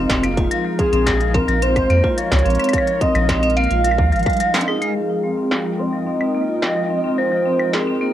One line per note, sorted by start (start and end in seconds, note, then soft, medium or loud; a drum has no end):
0.00 0.47 G#3 medium
0.00 4.92 D#4 medium
0.00 0.47 F4 medium
0.00 4.97 F4 medium
0.00 0.47 G#4 medium
0.00 0.47 A#4 medium
0.00 0.23 D#5 medium
0.00 4.97 F5 medium
0.09 0.48 F1 medium
0.09 0.18 C4 loud
0.09 kick loud
0.09 snare loud
0.09 closed hi-hat soft
0.23 0.32 A#3 medium
0.23 closed hi-hat medium
0.23 claves medium
0.37 0.46 F4 medium
0.37 kick loud
0.37 closed hi-hat soft
0.51 0.60 F3 medium
0.51 4.92 G#3 medium
0.51 4.92 A#4 medium
0.51 4.92 D#5 medium
0.51 closed hi-hat medium
0.65 0.74 F3 medium
0.79 0.88 C4 medium
0.79 1.36 G#4 medium
0.79 kick loud
0.79 closed hi-hat medium
0.93 1.45 A#1 loud
0.93 1.01 C4 loud
0.93 closed hi-hat soft
1.07 1.12 F3 medium
1.07 kick loud
1.07 snare loud
1.07 closed hi-hat medium
1.21 1.29 F3 medium
1.21 closed hi-hat soft
1.34 1.43 C4 loud
1.34 1.64 A#4 medium
1.34 kick loud
1.34 closed hi-hat medium
1.48 1.87 A#1 medium
1.48 1.57 F3 medium
1.48 closed hi-hat soft
1.62 1.71 C4 loud
1.62 2.19 C5 loud
1.62 closed hi-hat medium
1.76 1.85 C4 loud
1.76 kick medium
1.76 closed hi-hat soft
1.76 claves medium
1.90 2.02 F2 medium
1.90 1.99 A#3 loud
1.90 closed hi-hat soft
2.04 2.13 F4 medium
2.04 kick loud
2.18 2.26 F3 medium
2.18 2.73 C#5 loud
2.18 closed hi-hat medium
2.32 2.43 C#2 loud
2.32 2.40 F3 medium
2.32 kick loud
2.32 snare loud
2.39 closed hi-hat soft
2.46 2.57 A#1 loud
2.46 2.54 C4 medium
2.46 closed hi-hat soft
2.50 closed hi-hat soft
2.55 closed hi-hat soft
2.59 2.68 C4 loud
2.59 closed hi-hat soft
2.59 claves soft
2.64 closed hi-hat medium
2.69 closed hi-hat medium
2.69 claves soft
2.73 2.79 F3 medium
2.73 3.03 C#5 loud
2.73 kick loud
2.73 closed hi-hat medium
2.78 claves medium
2.87 2.96 F3 medium
2.87 closed hi-hat soft
3.01 3.10 C4 loud
3.01 3.56 D#5 loud
3.01 kick loud
3.01 closed hi-hat medium
3.15 3.67 A#1 loud
3.15 3.24 F3 medium
3.15 closed hi-hat soft
3.15 claves medium
3.29 3.38 C4 loud
3.29 kick loud
3.29 snare loud
3.29 closed hi-hat medium
3.43 3.51 C4 loud
3.43 closed hi-hat soft
3.50 closed hi-hat soft
3.57 3.65 A#3 loud
3.57 4.64 F5 loud
3.57 closed hi-hat medium
3.64 closed hi-hat soft
3.71 4.00 A#1 medium
3.71 3.79 F4 medium
3.71 closed hi-hat soft
3.85 3.93 F3 medium
3.85 closed hi-hat medium
3.91 claves medium
3.98 4.14 D#2 medium
3.98 4.07 F3 medium
3.98 kick loud
4.12 4.24 G#1 medium
4.12 4.21 F3 medium
4.12 closed hi-hat soft
4.16 closed hi-hat soft
4.19 closed hi-hat soft
4.23 closed hi-hat soft
4.26 4.39 G3 loud
4.26 kick loud
4.26 closed hi-hat soft
4.26 claves soft
4.30 closed hi-hat soft
4.33 closed hi-hat soft
4.37 closed hi-hat soft
4.40 4.53 F3 medium
4.40 closed hi-hat medium
4.54 4.63 C4 medium
4.54 snare loud
4.54 closed hi-hat soft
4.61 closed hi-hat medium
4.68 4.76 D#4 medium
4.68 5.80 G#4 loud
4.68 claves medium
4.82 4.90 G#3 loud
4.82 closed hi-hat soft
4.96 5.04 F3 medium
4.96 8.13 G#3 medium
4.96 8.13 D#4 medium
4.96 8.13 F4 medium
4.96 8.13 A#4 medium
4.96 8.13 D#5 medium
4.96 8.13 G5 medium
5.10 5.18 F3 medium
5.23 5.32 C4 medium
5.37 5.46 C4 medium
5.51 5.56 F3 medium
5.51 snare loud
5.65 5.74 F3 medium
5.79 5.88 C4 medium
5.79 7.19 D#5 loud
5.93 6.01 F3 medium
6.07 6.15 C4 medium
6.21 6.29 C4 medium
6.21 claves soft
6.35 6.43 A#3 medium
6.48 6.57 F4 medium
6.62 6.71 F3 medium
6.62 snare loud
6.76 6.85 F3 medium
6.90 6.99 C4 medium
7.04 7.13 C4 medium
7.18 7.23 F3 medium
7.18 7.75 C5 loud
7.32 7.40 F3 medium
7.46 7.54 C4 medium
7.59 7.68 F3 medium
7.59 claves medium
7.73 7.82 C4 medium
7.73 8.13 G#4 medium
7.73 snare loud
7.87 7.96 C4 medium
8.01 8.10 A#3 medium